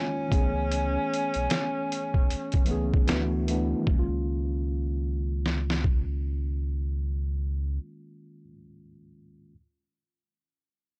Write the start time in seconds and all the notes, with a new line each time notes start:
Already playing: D#3 G#3 A#3 C#4 F4
0.28 C#2 E3 A3 B3, kick, closed hi-hat
0.33 C#4 G#4
0.72 closed hi-hat
1.14 closed hi-hat
1.34 B1, closed hi-hat
1.50 snare, closed hi-hat
1.92 closed hi-hat
2.14 kick
2.30 closed hi-hat
2.52 kick, closed hi-hat
2.65 C#2 E3 A3 B3, closed hi-hat
2.70 C#4 G#4
2.94 kick
3.07 D2 E3 A3 B3, snare, closed hi-hat
3.11 D4 F#4
3.48 E3 A3 B3, closed hi-hat
3.52 D4 E4
3.76 D#3
3.82 G#3
3.87 C#2 A#3, kick
3.93 C#4
3.99 F4
5.46 snare
5.70 snare
5.84 kick